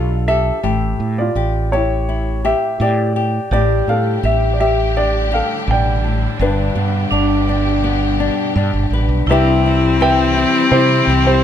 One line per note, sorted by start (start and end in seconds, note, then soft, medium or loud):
0.00 0.50 B1 medium
0.00 0.59 D3 medium
0.00 0.60 D4 soft
0.00 0.60 F4 soft
0.00 0.17 G4 medium
0.00 0.25 A4 medium
0.00 0.28 A4 medium
0.00 0.96 A4 soft
0.00 0.30 F5 medium
0.28 1.15 G4 medium
0.28 0.63 A4 medium
0.28 1.21 E5 loud
0.63 0.93 A1 medium
0.63 3.47 A2 medium
0.63 1.36 G4 medium
1.00 1.29 A2 medium
1.18 1.69 F4 medium
1.18 1.74 D5 medium
1.35 2.52 A1 medium
1.35 1.73 G4 medium
1.72 2.41 E4 medium
1.72 2.44 G4 medium
1.72 2.46 C#5 medium
2.09 3.48 E4 soft
2.45 2.81 G4 medium
2.45 2.79 G4 medium
2.45 2.82 E5 medium
2.80 3.38 A2 medium
2.80 3.16 G4 medium
2.80 3.50 G4 medium
2.80 3.49 D5 medium
3.16 3.53 G4 medium
3.51 3.81 A1 medium
3.51 5.67 A2 medium
3.51 6.37 A2 medium
3.51 9.24 D3 medium
3.51 9.24 G3 medium
3.51 9.24 D4 medium
3.51 5.93 G4 soft
3.51 6.37 G4 medium
3.51 4.23 G4 medium
3.51 3.87 G4 medium
3.51 3.89 D5 medium
3.87 4.17 A2 medium
3.87 4.96 D4 medium
3.87 4.23 A4 medium
3.87 4.22 F5 medium
4.23 5.40 A1 medium
4.23 4.60 G4 medium
4.23 4.52 G4 medium
4.23 4.54 E5 medium
4.53 4.60 D5 medium
4.60 5.31 G4 medium
4.60 4.94 G4 medium
4.60 4.97 E5 medium
4.96 6.36 D4 soft
4.96 5.31 G4 medium
4.96 5.30 D5 medium
5.32 8.92 G4 medium
5.32 5.67 A4 medium
5.32 5.66 F5 medium
5.67 6.26 A1 medium
5.67 6.04 B2 medium
5.67 6.43 G5 medium
5.72 6.38 D5 medium
6.04 6.40 A2 medium
6.39 6.69 G1 loud
6.39 9.28 G2 medium
6.39 9.25 B2 medium
6.39 7.11 D4 medium
6.39 9.25 G4 medium
6.39 8.89 B4 medium
6.43 8.90 D4 medium
6.75 7.05 G2 medium
6.75 7.83 B3 medium
7.11 8.29 G1 medium
7.11 9.52 D4 medium
7.11 7.48 D4 medium
7.49 8.19 D4 medium
7.84 9.24 B3 medium
8.20 8.56 D4 medium
8.56 8.70 G2 loud
8.56 9.29 D4 medium
8.73 8.90 G1 medium
8.91 9.07 A1 medium
8.91 9.24 B4 medium
9.09 9.25 B1 medium
9.26 10.44 C2 medium
9.26 11.44 C3 medium
9.26 11.44 E3 medium
9.26 11.44 G3 medium
9.26 11.44 C4 medium
9.26 11.44 E4 medium
9.31 11.44 C4 medium
9.31 9.65 E4 medium
9.31 10.69 G4 medium
9.31 10.00 G4 medium
9.31 10.00 B4 medium
9.31 10.00 E5 loud
9.66 10.36 E4 medium
10.01 11.08 G4 medium
10.01 11.40 B4 medium
10.01 11.40 E5 medium
10.01 10.75 G5 loud
10.37 11.44 E4 medium
10.71 11.01 C3 medium
10.71 11.26 E4 medium
10.71 11.26 G4 medium
10.71 11.25 C5 medium
11.07 11.44 C2 medium
11.07 11.44 G4 medium
11.27 11.44 E4 medium
11.27 11.44 G4 medium
11.27 11.44 C5 medium